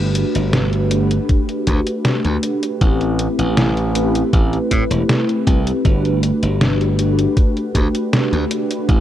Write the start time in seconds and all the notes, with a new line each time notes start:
Already playing: G1 A3 D4 F#4 G4 B4
0.15 closed hi-hat
0.35 G1, closed hi-hat
0.53 snare, closed hi-hat
0.73 closed hi-hat
0.90 A3 D4 F#4 G4 B4, closed hi-hat
1.11 closed hi-hat
1.29 kick, closed hi-hat
1.49 closed hi-hat
1.67 D2, kick, closed hi-hat
1.87 closed hi-hat
2.05 snare, closed hi-hat
2.25 D2, closed hi-hat
2.43 closed hi-hat
2.63 closed hi-hat
2.79 A1 A3 C4 E4 G4 B4, kick, closed hi-hat
3.01 closed hi-hat
3.19 closed hi-hat
3.39 A1, closed hi-hat
3.57 snare, closed hi-hat
3.77 closed hi-hat
3.94 A3 C4 E4 G4 B4, closed hi-hat
4.15 closed hi-hat
4.33 A1, kick, closed hi-hat
4.53 closed hi-hat
4.71 A2, kick, closed hi-hat
4.91 E1, closed hi-hat
5.09 snare, closed hi-hat
5.29 closed hi-hat
5.47 C2, kick, closed hi-hat
5.67 closed hi-hat
5.84 G1 A3 D4 F#4 G4 B4, kick, closed hi-hat
6.05 closed hi-hat
6.23 closed hi-hat
6.43 G1, closed hi-hat
6.61 snare, closed hi-hat
6.81 closed hi-hat
6.98 A3 D4 F#4 G4 B4, closed hi-hat
7.19 closed hi-hat
7.37 kick, closed hi-hat
7.57 closed hi-hat
7.75 D2, kick, closed hi-hat
7.95 closed hi-hat
8.13 snare, closed hi-hat
8.32 D2, closed hi-hat
8.51 closed hi-hat
8.71 closed hi-hat
8.87 A1 A3 C4 E4 G4 B4, kick, closed hi-hat